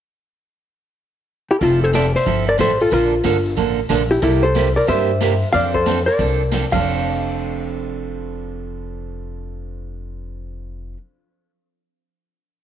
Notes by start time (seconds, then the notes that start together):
1.51 E4 G4
1.61 F1 F3 C4 E4 F4 A4, kick, open hi-hat
1.84 A4 C5
1.93 F3 C4 E4 A4 D5, snare, closed hi-hat
2.15 C5 E5, snare
2.26 G1 F3 C4 E4 A4, kick, open hi-hat
2.49 A#4 D5
2.58 A1 F3 C4 E4 A4 C5, snare, closed hi-hat
2.80 F4 A4, open hi-hat
2.91 A#1 D3 F3 A#3 D4 F4 A4 A#4, kick, open hi-hat
3.24 G1 D3 F3 A#3 D4 A4, snare, closed hi-hat
3.46 open hi-hat
3.57 A1 D3 F3 A#3 D4 A4, kick, open hi-hat
3.89 A#1 D3 F3 A#3 D4 A4, snare, closed hi-hat
4.11 E4 G4, open hi-hat
4.22 C2 C3 G3 A#3 E4 G4 A4, kick, open hi-hat
4.43 A4 C5
4.55 C3 G3 A#3 E4 G4, snare, closed hi-hat
4.76 A#4 D5, open hi-hat
4.87 G2 C3 G3 A#3 E4 G4 C5 E5, kick, open hi-hat
5.21 C3 G3 A#3 E4 G4, snare, closed hi-hat
5.42 open hi-hat
5.53 F2 F3 C4 D4 A4 D5 F5, kick, open hi-hat
5.74 A4 C5, kick
5.86 F3 C4 D4 A4, snare, closed hi-hat
6.06 A#4 D5, open hi-hat
6.19 C2 F3 C4 D4 A4, kick, open hi-hat
6.51 F3 C4 D4 A4, snare, closed hi-hat
6.71 F1 F3 C4 D4 A4 F5, kick, crash